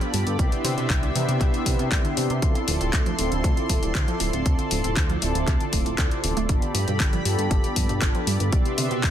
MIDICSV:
0, 0, Header, 1, 6, 480
1, 0, Start_track
1, 0, Tempo, 508475
1, 370, Time_signature, 4, 2, 24, 8
1, 8595, End_track
2, 0, Start_track
2, 0, Title_t, "Analog synth pad"
2, 0, Program_c, 0, 89
2, 0, Note_on_c, 0, 67, 83
2, 0, Note_on_c, 0, 74, 73
2, 0, Note_on_c, 0, 83, 87
2, 351, Note_off_c, 0, 83, 0
2, 352, Note_off_c, 0, 67, 0
2, 368, Note_on_c, 0, 76, 74
2, 368, Note_on_c, 0, 84, 90
2, 371, Note_on_c, 0, 59, 81
2, 2252, Note_off_c, 0, 74, 0
2, 2270, Note_off_c, 0, 76, 0
2, 2271, Note_off_c, 0, 59, 0
2, 2287, Note_on_c, 0, 69, 81
2, 2287, Note_on_c, 0, 74, 76
2, 6091, Note_off_c, 0, 69, 0
2, 6091, Note_off_c, 0, 84, 0
2, 6125, Note_on_c, 0, 67, 81
2, 6125, Note_on_c, 0, 83, 91
2, 8028, Note_off_c, 0, 67, 0
2, 8028, Note_off_c, 0, 83, 0
2, 8044, Note_on_c, 0, 76, 75
2, 8044, Note_on_c, 0, 84, 88
2, 8046, Note_on_c, 0, 59, 81
2, 8595, Note_off_c, 0, 59, 0
2, 8595, Note_off_c, 0, 74, 0
2, 8595, Note_off_c, 0, 76, 0
2, 8595, Note_off_c, 0, 84, 0
2, 8595, End_track
3, 0, Start_track
3, 0, Title_t, "Analog polysynth"
3, 0, Program_c, 1, 90
3, 0, Note_on_c, 1, 59, 91
3, 0, Note_on_c, 1, 62, 83
3, 0, Note_on_c, 1, 65, 83
3, 0, Note_on_c, 1, 69, 100
3, 338, Note_off_c, 1, 59, 0
3, 341, Note_off_c, 1, 62, 0
3, 345, Note_off_c, 1, 65, 0
3, 347, Note_off_c, 1, 69, 0
3, 358, Note_on_c, 1, 59, 74
3, 366, Note_on_c, 1, 62, 72
3, 371, Note_on_c, 1, 64, 71
3, 377, Note_on_c, 1, 67, 83
3, 1056, Note_off_c, 1, 59, 0
3, 1060, Note_off_c, 1, 62, 0
3, 1062, Note_off_c, 1, 64, 0
3, 1065, Note_off_c, 1, 67, 0
3, 1078, Note_on_c, 1, 59, 93
3, 1084, Note_on_c, 1, 62, 84
3, 1091, Note_on_c, 1, 64, 85
3, 1098, Note_on_c, 1, 67, 104
3, 2256, Note_off_c, 1, 59, 0
3, 2259, Note_off_c, 1, 62, 0
3, 2262, Note_off_c, 1, 64, 0
3, 2266, Note_off_c, 1, 67, 0
3, 2279, Note_on_c, 1, 60, 77
3, 2286, Note_on_c, 1, 64, 71
3, 2292, Note_on_c, 1, 65, 70
3, 2299, Note_on_c, 1, 69, 86
3, 2976, Note_off_c, 1, 60, 0
3, 2980, Note_off_c, 1, 64, 0
3, 2983, Note_off_c, 1, 65, 0
3, 2986, Note_off_c, 1, 69, 0
3, 2999, Note_on_c, 1, 60, 92
3, 3004, Note_on_c, 1, 64, 86
3, 3011, Note_on_c, 1, 65, 83
3, 3017, Note_on_c, 1, 69, 103
3, 4176, Note_off_c, 1, 60, 0
3, 4179, Note_off_c, 1, 64, 0
3, 4182, Note_off_c, 1, 65, 0
3, 4185, Note_off_c, 1, 69, 0
3, 4199, Note_on_c, 1, 60, 76
3, 4205, Note_on_c, 1, 64, 70
3, 4211, Note_on_c, 1, 65, 68
3, 4217, Note_on_c, 1, 69, 82
3, 4896, Note_off_c, 1, 60, 0
3, 4899, Note_off_c, 1, 64, 0
3, 4903, Note_off_c, 1, 65, 0
3, 4905, Note_off_c, 1, 69, 0
3, 4920, Note_on_c, 1, 60, 92
3, 4926, Note_on_c, 1, 64, 83
3, 4932, Note_on_c, 1, 65, 85
3, 4939, Note_on_c, 1, 69, 102
3, 5743, Note_off_c, 1, 60, 0
3, 5746, Note_off_c, 1, 64, 0
3, 5750, Note_off_c, 1, 65, 0
3, 5753, Note_off_c, 1, 69, 0
3, 5765, Note_on_c, 1, 60, 78
3, 5770, Note_on_c, 1, 64, 71
3, 5773, Note_on_c, 1, 65, 72
3, 5776, Note_on_c, 1, 69, 85
3, 6098, Note_off_c, 1, 60, 0
3, 6100, Note_off_c, 1, 64, 0
3, 6102, Note_off_c, 1, 65, 0
3, 6103, Note_off_c, 1, 69, 0
3, 6121, Note_on_c, 1, 59, 78
3, 6128, Note_on_c, 1, 62, 72
3, 6134, Note_on_c, 1, 65, 70
3, 6140, Note_on_c, 1, 69, 86
3, 6817, Note_off_c, 1, 59, 0
3, 6821, Note_off_c, 1, 62, 0
3, 6824, Note_off_c, 1, 65, 0
3, 6827, Note_off_c, 1, 69, 0
3, 6841, Note_on_c, 1, 59, 94
3, 6848, Note_on_c, 1, 62, 84
3, 6854, Note_on_c, 1, 65, 84
3, 6859, Note_on_c, 1, 69, 105
3, 8017, Note_off_c, 1, 59, 0
3, 8021, Note_off_c, 1, 62, 0
3, 8024, Note_off_c, 1, 65, 0
3, 8026, Note_off_c, 1, 69, 0
3, 8041, Note_on_c, 1, 59, 77
3, 8048, Note_on_c, 1, 62, 71
3, 8054, Note_on_c, 1, 64, 69
3, 8059, Note_on_c, 1, 67, 85
3, 8595, Note_off_c, 1, 59, 0
3, 8595, Note_off_c, 1, 62, 0
3, 8595, Note_off_c, 1, 64, 0
3, 8595, Note_off_c, 1, 67, 0
3, 8595, End_track
4, 0, Start_track
4, 0, Title_t, "Synth arpeggio sound"
4, 0, Program_c, 2, 84
4, 10, Note_on_c, 2, 53, 100
4, 53, Note_off_c, 2, 53, 0
4, 129, Note_on_c, 2, 55, 78
4, 173, Note_off_c, 2, 55, 0
4, 252, Note_on_c, 2, 50, 77
4, 356, Note_off_c, 2, 50, 0
4, 367, Note_on_c, 2, 47, 97
4, 441, Note_off_c, 2, 47, 0
4, 491, Note_on_c, 2, 48, 74
4, 561, Note_off_c, 2, 48, 0
4, 607, Note_on_c, 2, 50, 77
4, 681, Note_off_c, 2, 50, 0
4, 730, Note_on_c, 2, 47, 101
4, 835, Note_off_c, 2, 47, 0
4, 848, Note_on_c, 2, 48, 82
4, 958, Note_off_c, 2, 48, 0
4, 971, Note_on_c, 2, 50, 101
4, 1013, Note_off_c, 2, 50, 0
4, 1088, Note_on_c, 2, 52, 74
4, 1133, Note_off_c, 2, 52, 0
4, 1210, Note_on_c, 2, 48, 74
4, 1315, Note_off_c, 2, 48, 0
4, 1326, Note_on_c, 2, 47, 100
4, 1401, Note_off_c, 2, 47, 0
4, 1451, Note_on_c, 2, 48, 75
4, 1521, Note_off_c, 2, 48, 0
4, 1568, Note_on_c, 2, 50, 76
4, 1642, Note_off_c, 2, 50, 0
4, 1689, Note_on_c, 2, 47, 100
4, 1795, Note_off_c, 2, 47, 0
4, 1806, Note_on_c, 2, 48, 81
4, 1917, Note_off_c, 2, 48, 0
4, 1930, Note_on_c, 2, 50, 99
4, 1973, Note_off_c, 2, 50, 0
4, 2045, Note_on_c, 2, 52, 77
4, 2091, Note_off_c, 2, 52, 0
4, 2168, Note_on_c, 2, 48, 77
4, 2274, Note_off_c, 2, 48, 0
4, 2286, Note_on_c, 2, 48, 95
4, 2361, Note_off_c, 2, 48, 0
4, 2410, Note_on_c, 2, 50, 77
4, 2481, Note_off_c, 2, 50, 0
4, 2526, Note_on_c, 2, 53, 77
4, 2601, Note_off_c, 2, 53, 0
4, 2648, Note_on_c, 2, 48, 101
4, 2754, Note_off_c, 2, 48, 0
4, 2766, Note_on_c, 2, 50, 82
4, 2877, Note_off_c, 2, 50, 0
4, 2889, Note_on_c, 2, 53, 102
4, 2933, Note_off_c, 2, 53, 0
4, 3007, Note_on_c, 2, 57, 74
4, 3052, Note_off_c, 2, 57, 0
4, 3130, Note_on_c, 2, 50, 73
4, 3235, Note_off_c, 2, 50, 0
4, 3246, Note_on_c, 2, 48, 102
4, 3321, Note_off_c, 2, 48, 0
4, 3369, Note_on_c, 2, 50, 74
4, 3440, Note_off_c, 2, 50, 0
4, 3488, Note_on_c, 2, 53, 78
4, 3562, Note_off_c, 2, 53, 0
4, 3610, Note_on_c, 2, 48, 101
4, 3715, Note_off_c, 2, 48, 0
4, 3726, Note_on_c, 2, 50, 82
4, 3837, Note_off_c, 2, 50, 0
4, 3850, Note_on_c, 2, 53, 100
4, 3893, Note_off_c, 2, 53, 0
4, 3967, Note_on_c, 2, 57, 75
4, 4012, Note_off_c, 2, 57, 0
4, 4089, Note_on_c, 2, 50, 75
4, 4195, Note_off_c, 2, 50, 0
4, 4206, Note_on_c, 2, 48, 96
4, 4281, Note_off_c, 2, 48, 0
4, 4330, Note_on_c, 2, 50, 75
4, 4401, Note_off_c, 2, 50, 0
4, 4447, Note_on_c, 2, 53, 75
4, 4521, Note_off_c, 2, 53, 0
4, 4571, Note_on_c, 2, 48, 99
4, 4676, Note_off_c, 2, 48, 0
4, 4686, Note_on_c, 2, 50, 83
4, 4797, Note_off_c, 2, 50, 0
4, 4810, Note_on_c, 2, 53, 100
4, 4853, Note_off_c, 2, 53, 0
4, 4927, Note_on_c, 2, 57, 74
4, 4972, Note_off_c, 2, 57, 0
4, 5050, Note_on_c, 2, 50, 73
4, 5155, Note_off_c, 2, 50, 0
4, 5168, Note_on_c, 2, 48, 103
4, 5242, Note_off_c, 2, 48, 0
4, 5291, Note_on_c, 2, 50, 75
4, 5361, Note_off_c, 2, 50, 0
4, 5408, Note_on_c, 2, 57, 75
4, 5519, Note_off_c, 2, 57, 0
4, 5530, Note_on_c, 2, 57, 75
4, 5601, Note_off_c, 2, 57, 0
4, 5649, Note_on_c, 2, 60, 80
4, 5722, Note_off_c, 2, 60, 0
4, 5772, Note_on_c, 2, 48, 99
4, 5842, Note_off_c, 2, 48, 0
4, 5889, Note_on_c, 2, 48, 75
4, 5963, Note_off_c, 2, 48, 0
4, 6012, Note_on_c, 2, 57, 100
4, 6116, Note_off_c, 2, 57, 0
4, 6128, Note_on_c, 2, 47, 95
4, 6202, Note_off_c, 2, 47, 0
4, 6252, Note_on_c, 2, 50, 76
4, 6322, Note_off_c, 2, 50, 0
4, 6368, Note_on_c, 2, 53, 74
4, 6442, Note_off_c, 2, 53, 0
4, 6492, Note_on_c, 2, 47, 100
4, 6596, Note_off_c, 2, 47, 0
4, 6608, Note_on_c, 2, 50, 85
4, 6719, Note_off_c, 2, 50, 0
4, 6731, Note_on_c, 2, 53, 99
4, 6774, Note_off_c, 2, 53, 0
4, 6849, Note_on_c, 2, 55, 74
4, 6893, Note_off_c, 2, 55, 0
4, 6972, Note_on_c, 2, 50, 74
4, 7076, Note_off_c, 2, 50, 0
4, 7088, Note_on_c, 2, 47, 100
4, 7162, Note_off_c, 2, 47, 0
4, 7212, Note_on_c, 2, 50, 75
4, 7282, Note_off_c, 2, 50, 0
4, 7329, Note_on_c, 2, 53, 77
4, 7402, Note_off_c, 2, 53, 0
4, 7451, Note_on_c, 2, 47, 100
4, 7556, Note_off_c, 2, 47, 0
4, 7569, Note_on_c, 2, 50, 79
4, 7679, Note_off_c, 2, 50, 0
4, 7691, Note_on_c, 2, 53, 99
4, 7733, Note_off_c, 2, 53, 0
4, 7809, Note_on_c, 2, 55, 77
4, 7853, Note_off_c, 2, 55, 0
4, 7931, Note_on_c, 2, 50, 77
4, 8036, Note_off_c, 2, 50, 0
4, 8048, Note_on_c, 2, 47, 99
4, 8122, Note_off_c, 2, 47, 0
4, 8170, Note_on_c, 2, 48, 76
4, 8241, Note_off_c, 2, 48, 0
4, 8288, Note_on_c, 2, 50, 77
4, 8362, Note_off_c, 2, 50, 0
4, 8411, Note_on_c, 2, 47, 104
4, 8516, Note_off_c, 2, 47, 0
4, 8528, Note_on_c, 2, 48, 85
4, 8595, Note_off_c, 2, 48, 0
4, 8595, End_track
5, 0, Start_track
5, 0, Title_t, "Analog synth bass"
5, 0, Program_c, 3, 38
5, 130, Note_on_c, 3, 43, 76
5, 231, Note_off_c, 3, 43, 0
5, 253, Note_on_c, 3, 43, 80
5, 348, Note_off_c, 3, 43, 0
5, 369, Note_on_c, 3, 36, 93
5, 470, Note_off_c, 3, 36, 0
5, 607, Note_on_c, 3, 48, 102
5, 709, Note_off_c, 3, 48, 0
5, 732, Note_on_c, 3, 48, 82
5, 828, Note_off_c, 3, 48, 0
5, 849, Note_on_c, 3, 36, 96
5, 1047, Note_off_c, 3, 36, 0
5, 1090, Note_on_c, 3, 48, 92
5, 1190, Note_off_c, 3, 48, 0
5, 1214, Note_on_c, 3, 48, 88
5, 1309, Note_off_c, 3, 48, 0
5, 1329, Note_on_c, 3, 36, 86
5, 1430, Note_off_c, 3, 36, 0
5, 1568, Note_on_c, 3, 48, 85
5, 1670, Note_off_c, 3, 48, 0
5, 1694, Note_on_c, 3, 48, 91
5, 1789, Note_off_c, 3, 48, 0
5, 1808, Note_on_c, 3, 36, 93
5, 1910, Note_off_c, 3, 36, 0
5, 2052, Note_on_c, 3, 48, 80
5, 2152, Note_off_c, 3, 48, 0
5, 2174, Note_on_c, 3, 48, 82
5, 2269, Note_off_c, 3, 48, 0
5, 2288, Note_on_c, 3, 38, 96
5, 2390, Note_off_c, 3, 38, 0
5, 2531, Note_on_c, 3, 26, 104
5, 2631, Note_off_c, 3, 26, 0
5, 2656, Note_on_c, 3, 26, 80
5, 2750, Note_off_c, 3, 26, 0
5, 2769, Note_on_c, 3, 38, 97
5, 2967, Note_off_c, 3, 38, 0
5, 3011, Note_on_c, 3, 26, 89
5, 3111, Note_off_c, 3, 26, 0
5, 3134, Note_on_c, 3, 26, 85
5, 3229, Note_off_c, 3, 26, 0
5, 3248, Note_on_c, 3, 38, 91
5, 3350, Note_off_c, 3, 38, 0
5, 3488, Note_on_c, 3, 26, 82
5, 3590, Note_off_c, 3, 26, 0
5, 3610, Note_on_c, 3, 26, 95
5, 3707, Note_off_c, 3, 26, 0
5, 3729, Note_on_c, 3, 38, 93
5, 3830, Note_off_c, 3, 38, 0
5, 3970, Note_on_c, 3, 26, 77
5, 4071, Note_off_c, 3, 26, 0
5, 4093, Note_on_c, 3, 26, 80
5, 4188, Note_off_c, 3, 26, 0
5, 4208, Note_on_c, 3, 38, 93
5, 4310, Note_off_c, 3, 38, 0
5, 4449, Note_on_c, 3, 26, 101
5, 4550, Note_off_c, 3, 26, 0
5, 4573, Note_on_c, 3, 26, 80
5, 4668, Note_off_c, 3, 26, 0
5, 4688, Note_on_c, 3, 38, 96
5, 4886, Note_off_c, 3, 38, 0
5, 4929, Note_on_c, 3, 26, 92
5, 5030, Note_off_c, 3, 26, 0
5, 5052, Note_on_c, 3, 26, 84
5, 5148, Note_off_c, 3, 26, 0
5, 5169, Note_on_c, 3, 38, 78
5, 5270, Note_off_c, 3, 38, 0
5, 5409, Note_on_c, 3, 26, 83
5, 5510, Note_off_c, 3, 26, 0
5, 5533, Note_on_c, 3, 26, 81
5, 5628, Note_off_c, 3, 26, 0
5, 5649, Note_on_c, 3, 38, 82
5, 5750, Note_off_c, 3, 38, 0
5, 5890, Note_on_c, 3, 26, 84
5, 5990, Note_off_c, 3, 26, 0
5, 6013, Note_on_c, 3, 26, 93
5, 6108, Note_off_c, 3, 26, 0
5, 6129, Note_on_c, 3, 31, 93
5, 6230, Note_off_c, 3, 31, 0
5, 6369, Note_on_c, 3, 43, 101
5, 6470, Note_off_c, 3, 43, 0
5, 6494, Note_on_c, 3, 43, 81
5, 6589, Note_off_c, 3, 43, 0
5, 6609, Note_on_c, 3, 31, 96
5, 6807, Note_off_c, 3, 31, 0
5, 6848, Note_on_c, 3, 43, 93
5, 6950, Note_off_c, 3, 43, 0
5, 6972, Note_on_c, 3, 43, 88
5, 7068, Note_off_c, 3, 43, 0
5, 7088, Note_on_c, 3, 31, 89
5, 7190, Note_off_c, 3, 31, 0
5, 7329, Note_on_c, 3, 43, 85
5, 7430, Note_off_c, 3, 43, 0
5, 7451, Note_on_c, 3, 43, 95
5, 7547, Note_off_c, 3, 43, 0
5, 7569, Note_on_c, 3, 31, 94
5, 7670, Note_off_c, 3, 31, 0
5, 7808, Note_on_c, 3, 43, 78
5, 7909, Note_off_c, 3, 43, 0
5, 7933, Note_on_c, 3, 43, 79
5, 8029, Note_off_c, 3, 43, 0
5, 8049, Note_on_c, 3, 36, 95
5, 8150, Note_off_c, 3, 36, 0
5, 8287, Note_on_c, 3, 48, 102
5, 8389, Note_off_c, 3, 48, 0
5, 8413, Note_on_c, 3, 48, 83
5, 8508, Note_off_c, 3, 48, 0
5, 8529, Note_on_c, 3, 36, 99
5, 8595, Note_off_c, 3, 36, 0
5, 8595, End_track
6, 0, Start_track
6, 0, Title_t, "Drums"
6, 12, Note_on_c, 9, 42, 36
6, 106, Note_off_c, 9, 42, 0
6, 129, Note_on_c, 9, 46, 86
6, 224, Note_off_c, 9, 46, 0
6, 252, Note_on_c, 9, 42, 36
6, 346, Note_off_c, 9, 42, 0
6, 369, Note_on_c, 9, 36, 111
6, 370, Note_on_c, 9, 42, 63
6, 463, Note_off_c, 9, 36, 0
6, 465, Note_off_c, 9, 42, 0
6, 493, Note_on_c, 9, 42, 38
6, 587, Note_off_c, 9, 42, 0
6, 610, Note_on_c, 9, 46, 96
6, 704, Note_off_c, 9, 46, 0
6, 734, Note_on_c, 9, 42, 36
6, 828, Note_off_c, 9, 42, 0
6, 848, Note_on_c, 9, 36, 108
6, 848, Note_on_c, 9, 42, 63
6, 851, Note_on_c, 9, 39, 104
6, 943, Note_off_c, 9, 36, 0
6, 943, Note_off_c, 9, 42, 0
6, 945, Note_off_c, 9, 39, 0
6, 973, Note_on_c, 9, 42, 38
6, 1067, Note_off_c, 9, 42, 0
6, 1091, Note_on_c, 9, 46, 85
6, 1185, Note_off_c, 9, 46, 0
6, 1214, Note_on_c, 9, 42, 38
6, 1308, Note_off_c, 9, 42, 0
6, 1328, Note_on_c, 9, 36, 111
6, 1329, Note_on_c, 9, 42, 62
6, 1331, Note_on_c, 9, 39, 33
6, 1422, Note_off_c, 9, 36, 0
6, 1423, Note_off_c, 9, 42, 0
6, 1426, Note_off_c, 9, 39, 0
6, 1453, Note_on_c, 9, 42, 36
6, 1548, Note_off_c, 9, 42, 0
6, 1568, Note_on_c, 9, 36, 53
6, 1568, Note_on_c, 9, 46, 98
6, 1662, Note_off_c, 9, 36, 0
6, 1663, Note_off_c, 9, 46, 0
6, 1692, Note_on_c, 9, 42, 38
6, 1787, Note_off_c, 9, 42, 0
6, 1808, Note_on_c, 9, 36, 112
6, 1810, Note_on_c, 9, 42, 62
6, 1812, Note_on_c, 9, 39, 106
6, 1902, Note_off_c, 9, 36, 0
6, 1904, Note_off_c, 9, 42, 0
6, 1907, Note_off_c, 9, 39, 0
6, 1933, Note_on_c, 9, 42, 39
6, 2027, Note_off_c, 9, 42, 0
6, 2050, Note_on_c, 9, 46, 83
6, 2144, Note_off_c, 9, 46, 0
6, 2172, Note_on_c, 9, 42, 36
6, 2266, Note_off_c, 9, 42, 0
6, 2288, Note_on_c, 9, 36, 109
6, 2288, Note_on_c, 9, 42, 64
6, 2382, Note_off_c, 9, 42, 0
6, 2383, Note_off_c, 9, 36, 0
6, 2411, Note_on_c, 9, 42, 39
6, 2505, Note_off_c, 9, 42, 0
6, 2528, Note_on_c, 9, 46, 93
6, 2622, Note_off_c, 9, 46, 0
6, 2651, Note_on_c, 9, 42, 38
6, 2745, Note_off_c, 9, 42, 0
6, 2767, Note_on_c, 9, 42, 65
6, 2768, Note_on_c, 9, 36, 109
6, 2770, Note_on_c, 9, 39, 114
6, 2862, Note_off_c, 9, 36, 0
6, 2862, Note_off_c, 9, 42, 0
6, 2864, Note_off_c, 9, 39, 0
6, 2891, Note_on_c, 9, 42, 40
6, 2985, Note_off_c, 9, 42, 0
6, 3008, Note_on_c, 9, 46, 85
6, 3102, Note_off_c, 9, 46, 0
6, 3132, Note_on_c, 9, 42, 39
6, 3226, Note_off_c, 9, 42, 0
6, 3248, Note_on_c, 9, 36, 109
6, 3250, Note_on_c, 9, 42, 63
6, 3342, Note_off_c, 9, 36, 0
6, 3344, Note_off_c, 9, 42, 0
6, 3373, Note_on_c, 9, 42, 38
6, 3467, Note_off_c, 9, 42, 0
6, 3488, Note_on_c, 9, 36, 54
6, 3488, Note_on_c, 9, 46, 98
6, 3582, Note_off_c, 9, 36, 0
6, 3582, Note_off_c, 9, 46, 0
6, 3612, Note_on_c, 9, 42, 40
6, 3707, Note_off_c, 9, 42, 0
6, 3728, Note_on_c, 9, 36, 111
6, 3728, Note_on_c, 9, 42, 65
6, 3730, Note_on_c, 9, 39, 110
6, 3822, Note_off_c, 9, 36, 0
6, 3822, Note_off_c, 9, 42, 0
6, 3825, Note_off_c, 9, 39, 0
6, 3852, Note_on_c, 9, 42, 38
6, 3946, Note_off_c, 9, 42, 0
6, 3966, Note_on_c, 9, 46, 83
6, 4060, Note_off_c, 9, 46, 0
6, 4091, Note_on_c, 9, 42, 39
6, 4185, Note_off_c, 9, 42, 0
6, 4208, Note_on_c, 9, 36, 111
6, 4208, Note_on_c, 9, 42, 68
6, 4302, Note_off_c, 9, 42, 0
6, 4303, Note_off_c, 9, 36, 0
6, 4330, Note_on_c, 9, 42, 41
6, 4425, Note_off_c, 9, 42, 0
6, 4446, Note_on_c, 9, 46, 93
6, 4541, Note_off_c, 9, 46, 0
6, 4571, Note_on_c, 9, 42, 39
6, 4665, Note_off_c, 9, 42, 0
6, 4687, Note_on_c, 9, 42, 66
6, 4688, Note_on_c, 9, 36, 109
6, 4689, Note_on_c, 9, 39, 114
6, 4781, Note_off_c, 9, 42, 0
6, 4783, Note_off_c, 9, 36, 0
6, 4784, Note_off_c, 9, 39, 0
6, 4810, Note_on_c, 9, 42, 41
6, 4905, Note_off_c, 9, 42, 0
6, 4928, Note_on_c, 9, 46, 87
6, 5022, Note_off_c, 9, 46, 0
6, 5053, Note_on_c, 9, 42, 40
6, 5147, Note_off_c, 9, 42, 0
6, 5169, Note_on_c, 9, 36, 112
6, 5169, Note_on_c, 9, 42, 68
6, 5171, Note_on_c, 9, 39, 35
6, 5263, Note_off_c, 9, 36, 0
6, 5263, Note_off_c, 9, 42, 0
6, 5265, Note_off_c, 9, 39, 0
6, 5291, Note_on_c, 9, 42, 39
6, 5386, Note_off_c, 9, 42, 0
6, 5407, Note_on_c, 9, 46, 100
6, 5408, Note_on_c, 9, 36, 57
6, 5501, Note_off_c, 9, 46, 0
6, 5503, Note_off_c, 9, 36, 0
6, 5532, Note_on_c, 9, 42, 40
6, 5627, Note_off_c, 9, 42, 0
6, 5648, Note_on_c, 9, 36, 110
6, 5648, Note_on_c, 9, 42, 65
6, 5650, Note_on_c, 9, 39, 115
6, 5742, Note_off_c, 9, 42, 0
6, 5743, Note_off_c, 9, 36, 0
6, 5745, Note_off_c, 9, 39, 0
6, 5772, Note_on_c, 9, 42, 41
6, 5866, Note_off_c, 9, 42, 0
6, 5888, Note_on_c, 9, 46, 86
6, 5982, Note_off_c, 9, 46, 0
6, 6012, Note_on_c, 9, 42, 39
6, 6106, Note_off_c, 9, 42, 0
6, 6127, Note_on_c, 9, 42, 65
6, 6129, Note_on_c, 9, 36, 116
6, 6222, Note_off_c, 9, 42, 0
6, 6223, Note_off_c, 9, 36, 0
6, 6252, Note_on_c, 9, 42, 41
6, 6346, Note_off_c, 9, 42, 0
6, 6369, Note_on_c, 9, 46, 100
6, 6463, Note_off_c, 9, 46, 0
6, 6492, Note_on_c, 9, 42, 39
6, 6586, Note_off_c, 9, 42, 0
6, 6608, Note_on_c, 9, 36, 116
6, 6608, Note_on_c, 9, 42, 66
6, 6610, Note_on_c, 9, 39, 118
6, 6702, Note_off_c, 9, 42, 0
6, 6703, Note_off_c, 9, 36, 0
6, 6705, Note_off_c, 9, 39, 0
6, 6731, Note_on_c, 9, 42, 40
6, 6825, Note_off_c, 9, 42, 0
6, 6848, Note_on_c, 9, 46, 89
6, 6943, Note_off_c, 9, 46, 0
6, 6973, Note_on_c, 9, 42, 40
6, 7067, Note_off_c, 9, 42, 0
6, 7088, Note_on_c, 9, 36, 117
6, 7088, Note_on_c, 9, 42, 67
6, 7183, Note_off_c, 9, 36, 0
6, 7183, Note_off_c, 9, 42, 0
6, 7212, Note_on_c, 9, 42, 39
6, 7306, Note_off_c, 9, 42, 0
6, 7328, Note_on_c, 9, 46, 106
6, 7329, Note_on_c, 9, 36, 57
6, 7422, Note_off_c, 9, 46, 0
6, 7423, Note_off_c, 9, 36, 0
6, 7451, Note_on_c, 9, 42, 41
6, 7545, Note_off_c, 9, 42, 0
6, 7567, Note_on_c, 9, 42, 65
6, 7569, Note_on_c, 9, 36, 120
6, 7569, Note_on_c, 9, 39, 116
6, 7661, Note_off_c, 9, 42, 0
6, 7663, Note_off_c, 9, 36, 0
6, 7664, Note_off_c, 9, 39, 0
6, 7691, Note_on_c, 9, 42, 39
6, 7786, Note_off_c, 9, 42, 0
6, 7809, Note_on_c, 9, 46, 85
6, 7903, Note_off_c, 9, 46, 0
6, 7931, Note_on_c, 9, 42, 40
6, 8026, Note_off_c, 9, 42, 0
6, 8047, Note_on_c, 9, 42, 64
6, 8048, Note_on_c, 9, 36, 121
6, 8142, Note_off_c, 9, 42, 0
6, 8143, Note_off_c, 9, 36, 0
6, 8170, Note_on_c, 9, 42, 39
6, 8265, Note_off_c, 9, 42, 0
6, 8287, Note_on_c, 9, 46, 103
6, 8381, Note_off_c, 9, 46, 0
6, 8410, Note_on_c, 9, 42, 37
6, 8504, Note_off_c, 9, 42, 0
6, 8528, Note_on_c, 9, 42, 63
6, 8529, Note_on_c, 9, 36, 118
6, 8531, Note_on_c, 9, 39, 118
6, 8595, Note_off_c, 9, 36, 0
6, 8595, Note_off_c, 9, 39, 0
6, 8595, Note_off_c, 9, 42, 0
6, 8595, End_track
0, 0, End_of_file